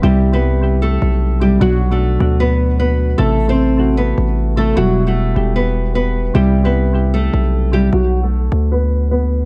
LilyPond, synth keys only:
\new Staff \with { instrumentName = "Synth keys" } { \time 4/4 \key b \phrygian \tempo 4 = 152 <c g e' g'>8 r16 <c g e' g'>8 r16 <c g e' g'>4. r8 <c g e' g'>16 r16 | <b, fis d' fis'>8 r16 <b, fis d' fis'>8 r16 <b, fis d' fis'>4. r4 | <c a e' a'>8 r16 <c a e' a'>8 r16 <c a e' fis'>4. r8 <c a e' a'>16 r16 | <b, g e' fis'>8 r16 <b, g e' fis'>8 r16 <b, g e' g'>4. r4 |
<c g e' g'>8 r16 <c g e' g'>8 r16 <c g e' g'>4. r8 <c g e' g'>16 r16 | r1 | }